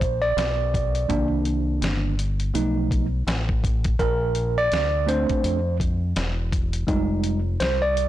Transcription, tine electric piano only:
0, 0, Header, 1, 2, 480
1, 0, Start_track
1, 0, Tempo, 722892
1, 728, Time_signature, 4, 2, 24, 8
1, 5369, End_track
2, 0, Start_track
2, 0, Title_t, "Tine electric piano"
2, 0, Program_c, 0, 4
2, 0, Note_on_c, 0, 72, 89
2, 144, Note_on_c, 0, 74, 100
2, 161, Note_off_c, 0, 72, 0
2, 719, Note_on_c, 0, 51, 53
2, 724, Note_on_c, 0, 58, 55
2, 727, Note_on_c, 0, 62, 66
2, 841, Note_off_c, 0, 74, 0
2, 1417, Note_off_c, 0, 51, 0
2, 1419, Note_off_c, 0, 58, 0
2, 1421, Note_off_c, 0, 62, 0
2, 1685, Note_on_c, 0, 53, 49
2, 1690, Note_on_c, 0, 57, 44
2, 1694, Note_on_c, 0, 63, 60
2, 2024, Note_off_c, 0, 53, 0
2, 2027, Note_off_c, 0, 57, 0
2, 2029, Note_off_c, 0, 63, 0
2, 2651, Note_on_c, 0, 70, 90
2, 3040, Note_on_c, 0, 74, 117
2, 3045, Note_off_c, 0, 70, 0
2, 3362, Note_on_c, 0, 57, 55
2, 3369, Note_on_c, 0, 60, 52
2, 3370, Note_on_c, 0, 62, 59
2, 3377, Note_on_c, 0, 72, 93
2, 3382, Note_off_c, 0, 74, 0
2, 3703, Note_off_c, 0, 57, 0
2, 3706, Note_off_c, 0, 60, 0
2, 3707, Note_off_c, 0, 62, 0
2, 3826, Note_off_c, 0, 72, 0
2, 4561, Note_on_c, 0, 55, 59
2, 4565, Note_on_c, 0, 56, 56
2, 4570, Note_on_c, 0, 63, 66
2, 4902, Note_off_c, 0, 55, 0
2, 4904, Note_off_c, 0, 56, 0
2, 4907, Note_off_c, 0, 63, 0
2, 5047, Note_on_c, 0, 72, 94
2, 5192, Note_on_c, 0, 74, 97
2, 5196, Note_off_c, 0, 72, 0
2, 5369, Note_off_c, 0, 74, 0
2, 5369, End_track
0, 0, End_of_file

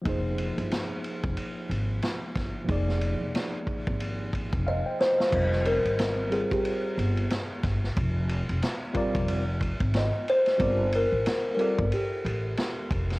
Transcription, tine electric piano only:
0, 0, Header, 1, 2, 480
1, 0, Start_track
1, 0, Tempo, 659341
1, 36, Time_signature, 4, 2, 24, 8
1, 9603, End_track
2, 0, Start_track
2, 0, Title_t, "Tine electric piano"
2, 0, Program_c, 0, 4
2, 9, Note_on_c, 0, 53, 67
2, 23, Note_on_c, 0, 58, 60
2, 36, Note_on_c, 0, 63, 61
2, 50, Note_on_c, 0, 68, 59
2, 63, Note_on_c, 0, 72, 71
2, 1913, Note_off_c, 0, 53, 0
2, 1920, Note_off_c, 0, 58, 0
2, 1924, Note_on_c, 0, 53, 69
2, 1927, Note_off_c, 0, 63, 0
2, 1934, Note_off_c, 0, 68, 0
2, 1936, Note_on_c, 0, 58, 64
2, 1940, Note_off_c, 0, 72, 0
2, 1950, Note_on_c, 0, 63, 65
2, 1964, Note_on_c, 0, 68, 62
2, 1978, Note_on_c, 0, 74, 72
2, 3143, Note_off_c, 0, 74, 0
2, 3396, Note_on_c, 0, 77, 68
2, 3528, Note_off_c, 0, 77, 0
2, 3538, Note_on_c, 0, 72, 61
2, 3539, Note_on_c, 0, 79, 65
2, 3631, Note_off_c, 0, 72, 0
2, 3636, Note_on_c, 0, 75, 62
2, 3771, Note_off_c, 0, 75, 0
2, 3775, Note_on_c, 0, 77, 57
2, 3831, Note_off_c, 0, 53, 0
2, 3837, Note_off_c, 0, 58, 0
2, 3844, Note_off_c, 0, 63, 0
2, 3851, Note_off_c, 0, 68, 0
2, 3853, Note_off_c, 0, 79, 0
2, 3861, Note_on_c, 0, 55, 60
2, 3869, Note_on_c, 0, 60, 54
2, 3874, Note_on_c, 0, 65, 55
2, 3883, Note_on_c, 0, 70, 55
2, 3888, Note_on_c, 0, 75, 65
2, 4005, Note_off_c, 0, 77, 0
2, 4549, Note_off_c, 0, 55, 0
2, 4553, Note_off_c, 0, 60, 0
2, 4556, Note_off_c, 0, 65, 0
2, 4560, Note_off_c, 0, 70, 0
2, 4563, Note_off_c, 0, 75, 0
2, 4583, Note_on_c, 0, 55, 63
2, 4590, Note_on_c, 0, 60, 59
2, 4595, Note_on_c, 0, 65, 56
2, 4605, Note_on_c, 0, 70, 57
2, 4610, Note_on_c, 0, 72, 67
2, 5270, Note_off_c, 0, 55, 0
2, 5274, Note_off_c, 0, 60, 0
2, 5276, Note_off_c, 0, 65, 0
2, 5281, Note_off_c, 0, 70, 0
2, 5284, Note_off_c, 0, 72, 0
2, 6505, Note_on_c, 0, 55, 83
2, 6511, Note_on_c, 0, 60, 79
2, 6519, Note_on_c, 0, 65, 81
2, 6525, Note_on_c, 0, 70, 75
2, 6531, Note_on_c, 0, 74, 95
2, 6864, Note_off_c, 0, 55, 0
2, 6867, Note_off_c, 0, 60, 0
2, 6871, Note_off_c, 0, 65, 0
2, 6874, Note_off_c, 0, 70, 0
2, 6877, Note_off_c, 0, 74, 0
2, 7702, Note_on_c, 0, 55, 72
2, 7709, Note_on_c, 0, 60, 65
2, 7717, Note_on_c, 0, 65, 66
2, 7721, Note_on_c, 0, 70, 67
2, 7730, Note_on_c, 0, 74, 78
2, 7890, Note_off_c, 0, 55, 0
2, 7893, Note_off_c, 0, 60, 0
2, 7897, Note_off_c, 0, 65, 0
2, 7900, Note_off_c, 0, 70, 0
2, 7904, Note_off_c, 0, 74, 0
2, 8422, Note_on_c, 0, 55, 70
2, 8429, Note_on_c, 0, 60, 67
2, 8437, Note_on_c, 0, 65, 65
2, 8441, Note_on_c, 0, 70, 60
2, 8449, Note_on_c, 0, 74, 81
2, 8610, Note_off_c, 0, 55, 0
2, 8613, Note_off_c, 0, 60, 0
2, 8618, Note_off_c, 0, 65, 0
2, 8620, Note_off_c, 0, 70, 0
2, 8624, Note_off_c, 0, 74, 0
2, 9603, End_track
0, 0, End_of_file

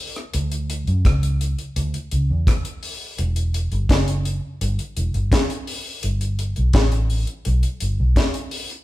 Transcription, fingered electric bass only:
0, 0, Header, 1, 2, 480
1, 0, Start_track
1, 0, Tempo, 711744
1, 228, Time_signature, 4, 2, 24, 8
1, 5960, End_track
2, 0, Start_track
2, 0, Title_t, "Fingered electric bass"
2, 0, Program_c, 0, 33
2, 232, Note_on_c, 0, 38, 99
2, 564, Note_off_c, 0, 38, 0
2, 591, Note_on_c, 0, 42, 78
2, 698, Note_off_c, 0, 42, 0
2, 711, Note_on_c, 0, 37, 91
2, 1043, Note_off_c, 0, 37, 0
2, 1189, Note_on_c, 0, 38, 91
2, 1298, Note_off_c, 0, 38, 0
2, 1433, Note_on_c, 0, 37, 81
2, 1540, Note_off_c, 0, 37, 0
2, 1552, Note_on_c, 0, 40, 83
2, 1659, Note_off_c, 0, 40, 0
2, 2150, Note_on_c, 0, 28, 100
2, 2483, Note_off_c, 0, 28, 0
2, 2510, Note_on_c, 0, 31, 91
2, 2618, Note_off_c, 0, 31, 0
2, 2628, Note_on_c, 0, 30, 87
2, 2962, Note_off_c, 0, 30, 0
2, 3111, Note_on_c, 0, 31, 94
2, 3219, Note_off_c, 0, 31, 0
2, 3353, Note_on_c, 0, 28, 81
2, 3460, Note_off_c, 0, 28, 0
2, 3470, Note_on_c, 0, 31, 81
2, 3577, Note_off_c, 0, 31, 0
2, 4073, Note_on_c, 0, 31, 93
2, 4404, Note_off_c, 0, 31, 0
2, 4436, Note_on_c, 0, 35, 84
2, 4541, Note_off_c, 0, 35, 0
2, 4547, Note_on_c, 0, 33, 89
2, 4880, Note_off_c, 0, 33, 0
2, 5034, Note_on_c, 0, 35, 94
2, 5139, Note_off_c, 0, 35, 0
2, 5274, Note_on_c, 0, 31, 77
2, 5379, Note_off_c, 0, 31, 0
2, 5393, Note_on_c, 0, 35, 85
2, 5498, Note_off_c, 0, 35, 0
2, 5960, End_track
0, 0, End_of_file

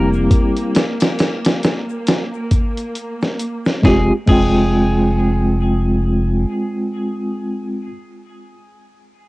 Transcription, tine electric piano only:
0, 0, Header, 1, 2, 480
1, 0, Start_track
1, 0, Key_signature, -4, "minor"
1, 0, Tempo, 882353
1, 169, Time_signature, 4, 2, 24, 8
1, 5050, End_track
2, 0, Start_track
2, 0, Title_t, "Tine electric piano"
2, 0, Program_c, 0, 4
2, 0, Note_on_c, 0, 55, 82
2, 0, Note_on_c, 0, 60, 76
2, 0, Note_on_c, 0, 64, 76
2, 0, Note_on_c, 0, 67, 96
2, 405, Note_off_c, 0, 55, 0
2, 408, Note_off_c, 0, 60, 0
2, 412, Note_off_c, 0, 64, 0
2, 415, Note_off_c, 0, 67, 0
2, 2078, Note_on_c, 0, 56, 82
2, 2087, Note_on_c, 0, 60, 78
2, 2098, Note_on_c, 0, 65, 79
2, 2109, Note_on_c, 0, 67, 93
2, 2232, Note_off_c, 0, 56, 0
2, 2237, Note_off_c, 0, 60, 0
2, 2243, Note_off_c, 0, 65, 0
2, 2249, Note_off_c, 0, 67, 0
2, 2319, Note_on_c, 0, 56, 86
2, 2330, Note_on_c, 0, 60, 81
2, 2341, Note_on_c, 0, 65, 80
2, 2350, Note_on_c, 0, 79, 96
2, 4271, Note_off_c, 0, 56, 0
2, 4281, Note_off_c, 0, 60, 0
2, 4293, Note_off_c, 0, 65, 0
2, 4302, Note_off_c, 0, 79, 0
2, 5050, End_track
0, 0, End_of_file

